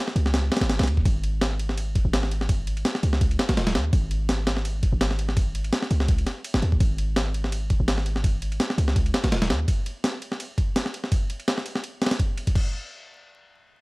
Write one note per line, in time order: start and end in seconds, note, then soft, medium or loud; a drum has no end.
0.08 snare medium
0.16 0.50 C#2 medium
0.16 ride medium
0.26 snare medium
0.34 snare loud
0.34 ride medium
0.52 snare medium
0.52 ride medium
0.57 snare medium
0.57 ride medium
0.61 0.79 G#1 medium
0.61 snare loud
0.61 ride medium
0.69 snare loud
0.69 ride medium
0.79 0.89 B1 loud
0.79 snare medium
0.79 ride medium
0.83 1.04 D#2 medium
0.83 snare medium
0.83 ride medium
0.87 ride medium
0.97 kick loud
1.05 2.04 G#1 loud
1.05 kick loud
1.05 ride medium
1.24 ride medium
1.41 snare loud
1.41 ride medium
1.59 ride medium
1.69 snare soft
1.77 ride medium
1.95 kick loud
1.95 ride medium
2.05 2.84 G#1 medium
2.13 snare loud
2.13 ride medium
2.23 snare soft
2.31 ride medium
2.41 snare soft
2.49 kick loud
2.49 ride medium
2.67 ride medium
2.77 ride soft
2.85 snare loud
2.85 ride medium
2.95 snare medium
3.03 3.38 C#2 medium
3.03 ride medium
3.13 snare medium
3.21 kick loud
3.21 ride medium
3.31 ride soft
3.39 snare loud
3.39 ride medium
3.49 3.59 G#1 medium
3.49 snare loud
3.49 ride medium
3.57 3.77 D#1 loud
3.57 snare loud
3.57 ride medium
3.67 snare loud
3.67 ride medium
3.75 3.91 D#2 medium
3.75 snare loud
3.75 ride medium
3.93 4.91 G#1 loud
3.93 kick loud
3.93 ride medium
4.11 ride medium
4.29 snare loud
4.29 ride medium
4.47 snare loud
4.47 ride medium
4.57 snare soft
4.65 ride medium
4.83 kick loud
4.83 ride medium
4.93 5.71 G#1 medium
5.01 snare loud
5.01 ride medium
5.11 snare soft
5.19 ride medium
5.29 snare soft
5.37 kick loud
5.37 ride medium
5.55 ride medium
5.64 ride soft
5.73 snare loud
5.73 ride medium
5.82 snare medium
5.91 6.25 C#2 medium
5.91 ride medium
6.00 snare medium
6.08 kick loud
6.08 ride medium
6.18 ride soft
6.27 snare medium
6.27 ride medium
6.44 ride medium
6.54 6.62 F#1 loud
6.54 snare loud
6.62 6.79 D#2 loud
6.62 ride medium
6.72 kick medium
6.80 7.79 G#1 loud
6.80 kick loud
6.80 ride medium
6.98 ride medium
7.16 snare loud
7.16 ride medium
7.34 ride medium
7.44 snare soft
7.52 ride medium
7.70 kick loud
7.70 ride medium
7.80 8.59 G#1 medium
7.88 snare loud
7.88 ride medium
7.98 snare soft
8.06 ride medium
8.16 snare soft
8.24 kick loud
8.24 ride medium
8.42 ride medium
8.52 ride soft
8.60 snare loud
8.60 ride medium
8.70 snare medium
8.78 9.13 C#2 medium
8.78 ride medium
8.88 snare medium
8.96 kick loud
8.96 ride medium
9.06 ride soft
9.14 snare loud
9.14 ride medium
9.24 9.33 G#1 medium
9.24 snare loud
9.24 ride medium
9.32 9.51 D#1 loud
9.32 snare loud
9.32 ride medium
9.42 snare loud
9.42 ride medium
9.50 9.66 D#2 medium
9.50 snare loud
9.50 ride medium
9.68 kick loud
9.68 ride medium
9.86 ride medium
10.04 snare loud
10.04 ride medium
10.22 ride medium
10.32 snare soft
10.40 ride medium
10.58 kick loud
10.58 ride medium
10.76 snare loud
10.76 ride medium
10.86 snare soft
10.94 ride medium
11.04 snare soft
11.12 kick loud
11.12 ride medium
11.30 ride medium
11.40 ride soft
11.48 snare loud
11.48 ride medium
11.58 snare medium
11.66 ride medium
11.75 snare medium
11.84 ride medium
12.02 snare medium
12.02 ride medium
12.06 snare medium
12.06 ride medium
12.11 snare loud
12.11 ride medium
12.20 kick loud
12.20 ride medium
12.37 ride medium
12.47 kick medium
12.47 ride medium
12.55 kick loud
12.55 crash medium